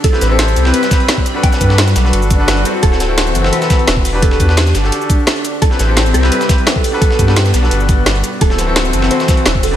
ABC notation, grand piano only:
X:1
M:4/4
L:1/16
Q:1/4=172
K:G
V:1 name="Grand piano"
z [CEGB]2 [CEGA]4 [CEGB]6- [CEGB] z [DFAB]- | [DFAB] [DFAB]2 [DFAB] z3 [DFAB]4 [DFAB]3 [CEFA]2- | [CEFA] [CEFA]2 [CEFA]4 [CEFA]6- [CEFA] z [DFGB]- | [DFGB] [DFGB]2 [DFGB] z3 [DFGA]8- [DFGA] |
z [CEGB]2 [CEGA]4 [CEGB]6- [CEGB] z [DFAB]- | [DFAB] [DFAB]2 [DFAB] z3 [DFAB]8- [DFAB] | z [CEFA]2 [CEFA]4 [CEFA]6- [CEFA] z [DFG] |]